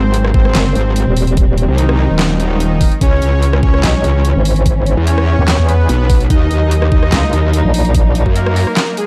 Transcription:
Already playing: G#1 F#3 G#3 C4 C5
0.14 closed hi-hat
0.25 cross-stick
0.34 G#1 C4 C5, kick
0.45 cross-stick
0.55 F#1, snare, clap, closed hi-hat
0.75 G#1, closed hi-hat
0.96 closed hi-hat
1.07 D#1
1.17 open hi-hat
1.27 closed hi-hat
1.37 kick, closed hi-hat
1.58 closed hi-hat
1.68 C2
1.78 D#3 D#4, closed hi-hat
1.89 cross-stick
2.10 D#1
2.19 snare, clap, closed hi-hat
2.40 D#3 D#4, closed hi-hat
2.60 closed hi-hat
2.81 kick, open hi-hat
2.92 closed hi-hat
3.01 C#2 E3 C#4 C#5, kick, closed hi-hat
3.22 C#2, closed hi-hat
3.42 closed hi-hat
3.53 cross-stick
3.63 C#2 C#4 C#5, kick
3.74 cross-stick
3.83 B1, snare, clap, closed hi-hat
4.04 C#2, closed hi-hat
4.25 closed hi-hat
4.35 G#1
4.45 open hi-hat
4.56 closed hi-hat
4.66 kick, closed hi-hat
4.86 closed hi-hat
4.97 E2
5.07 C#4 C#5, closed hi-hat
5.18 cross-stick
5.38 D#2
5.48 snare, clap, closed hi-hat
5.59 E2
5.69 B3 B4, closed hi-hat
5.89 B1, closed hi-hat
6.10 kick, open hi-hat
6.20 closed hi-hat
6.30 D#2 F#3 A#3 D#4 D#5, kick, closed hi-hat
6.51 D#2, closed hi-hat
6.71 closed hi-hat
6.82 cross-stick
6.92 D#2 D#4 D#5, kick
7.03 cross-stick
7.12 C#2, snare, clap, closed hi-hat
7.33 D#2, closed hi-hat
7.53 closed hi-hat
7.64 A#1
7.74 open hi-hat
7.85 closed hi-hat
7.95 kick, closed hi-hat
8.15 closed hi-hat
8.26 F#2, kick
8.36 A#3 A#4, closed hi-hat
8.46 cross-stick
8.56 open hi-hat
8.67 cross-stick
8.77 snare, clap, closed hi-hat
8.97 G#3 G#4, closed hi-hat

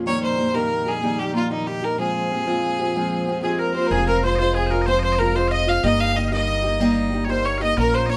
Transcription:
Already playing: F2 A#2
0.06 D#3 G3 A#3 D#4 G4 C#5
0.23 C5
0.37 G3 A#3 D#4 G4
0.54 D#3 G3 A#3 D#4 G4 A#4
0.86 G3 D#4 G4 G#4
1.02 D#3 G3 A#3 D#4 G4
1.19 G4
1.34 G3 A#3 D#4 F4 G4
1.50 D#3 G3 A#3 D#4 G4
1.67 G4
1.82 G3 D#4 G4 A#4
1.98 F3 G#3 C4 F4 G#4
2.30 G#3 C4 F4 G4
2.47 F3 G#3 C4 F4
2.79 C4 F4 G4
2.95 F3 G#3 C4 F4
3.27 G#3 C4 F4 G4
3.42 F3 G#3 C4 F4 G4 G#4
3.59 A#4
3.74 C4 F4 G4 C5
3.86 A#4
3.91 F1 F3 G#3 C4 F4 G#4
4.07 A#4
4.23 F3 G#3 C4 F4 C5
4.36 F4 C5 D#5
4.40 F3 G#3 C4
4.54 G#4
4.66 C5
4.70 G#3 C4 F4 A#4
4.82 D#5
4.86 F3 G#3 C4 F4 C5
4.99 C5 D#5
5.04 C5
5.12 C5 D#5
5.19 F3 G#3 C4 F4 A#4
5.35 F3 G#3 C4 F4 C5
5.48 D#5 F5
5.52 D#5
5.67 G#3 C4 F4 F5
5.83 G1 G3 A#3 D#4 G4 D#5
6.00 F5
6.13 G3 A#3 D#5 F5
6.17 D#4 G4
6.28 G4 F5
6.32 G3 A#3 D#4 D#5
6.64 A#3 D#4 G4
6.80 G3 A#3 D#4 G4
7.12 G3 A#3 D#4 G4
7.25 G4 C#5
7.29 G3 A#3 D#4 C5
7.45 C#5
7.58 D#4 G4 D#5 F5
7.62 A#3 D#5
7.77 A#1 A#3 C#4 F4 A#4
7.93 C5
8.06 A#3 C#4 F4 C#5 D#5
8.10 A#4 C#5

